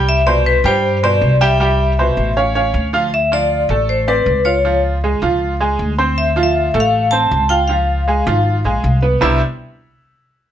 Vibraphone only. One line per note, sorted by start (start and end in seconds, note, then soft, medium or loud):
0.09 0.28 E5 loud
0.27 0.35 D5 medium
0.46 0.55 B4 medium
0.66 1.01 C5 medium
1.04 1.42 D5 loud
1.41 2.32 E5 medium
3.14 3.22 E5 loud
3.33 3.86 D5 medium
3.89 3.98 C5 medium
4.08 4.47 B4 medium
4.45 4.81 C#5 medium
6.18 6.26 E5 medium
6.43 6.82 E5 medium
6.80 7.13 F5 loud
7.11 7.51 A5 loud
7.49 7.70 G5 medium
7.68 8.98 F5 medium
9.22 9.40 E5 medium